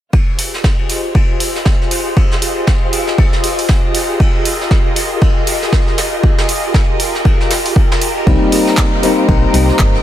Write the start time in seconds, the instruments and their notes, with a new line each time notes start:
0.13 string machine F4 G4 G#4 C5 D#5, string section F4, kick, ride
0.39 open hi-hat, ride
0.54 snare
0.64 string section D#5, kick, snare, ride
0.79 ride
0.89 snare, open hi-hat, ride
1.15 kick, ride
1.40 open hi-hat, ride
1.55 snare
1.65 kick, snare, ride
1.82 snare
1.91 open hi-hat, ride
2.07 ride
2.16 kick, ride
2.31 snare
2.42 open hi-hat, ride
2.58 ride
2.67 kick, snare, ride
2.93 open hi-hat, ride
3.07 snare
3.18 kick, ride
3.33 snare
3.44 open hi-hat, ride
3.59 open hi-hat
3.69 kick, snare, ride
3.95 open hi-hat, ride
4.10 ride
4.20 string machine A#4, kick, ride
4.45 open hi-hat, ride
4.61 snare
4.71 kick, snare, ride
4.86 ride
4.96 open hi-hat, ride
5.21 kick, ride
5.47 open hi-hat, ride
5.62 snare
5.73 kick, snare, ride
5.87 snare
5.98 snare, open hi-hat, ride
6.23 kick, ride
6.38 snare, ride
6.49 open hi-hat
6.63 ride
6.74 kick, snare, ride
6.99 open hi-hat, ride
7.15 snare
7.25 kick, ride
7.40 snare
7.51 snare, open hi-hat, ride
7.66 open hi-hat
7.76 kick, ride
7.91 snare, ride
8.01 open hi-hat
8.17 ride
8.26 fm bass C2, felt piano G3 A#3 C4 D#4, string machine D#4 C5 D6, string section D#4, kick, ride
8.50 string section A#5, open hi-hat, ride
8.67 snare
8.73 string section C5, clap
8.78 kick, snare, ride
8.93 ride
9.03 felt piano G3 A#3 C4 D#4, snare, open hi-hat, ride
9.29 fm bass A#1, kick, ride
9.54 fm bass C2, open hi-hat, ride
9.69 snare
9.79 fm bass G1, kick, snare, clap, ride
9.95 snare